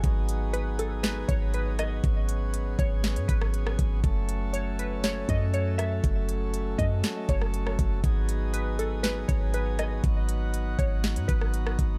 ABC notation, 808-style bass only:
X:1
M:4/4
L:1/16
Q:1/4=120
K:G#phr
V:1 name="808-style bass" clef=bass
G,,,8- G,,,2 G,,,6 | G,,,6 G,,,3 G,, G,,,4 G,,,2 | F,,,8- F,,,2 F,,6 | F,,,6 F,,2 z2 F,,,4 F,,,2 |
G,,,8- G,,,2 G,,,6 | G,,,6 G,,,3 G,, G,,,4 G,,,2 |]